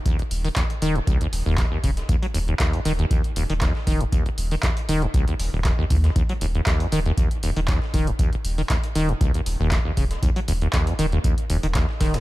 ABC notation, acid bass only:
X:1
M:4/4
L:1/16
Q:"Swing 16ths" 1/4=118
K:Ebm
V:1 name="Acid bass" clef=bass
E,, E,,, z E, E,, z E, G,, D,, E,, z E,, E,, E,, D, z | E,, G, E,, E,, E,, F,, E, E,, E,, z E,, E, E,, z E, G,, | E,, E,,, z E, E,, z E, G,, D,, E,, z E,,, E,, E,, D,, E,, | E,, G, E,, E,, E,, F,, E, E,, E,, z E,, E, E,, z E, G,, |
E,, E,,, z E, E,, z E, G,, D,, E,, z E,, z E,, D, z | E,, G, E,, E,, E,, F,, E, E,, E,, z E,, E, E,, z E, G,, |]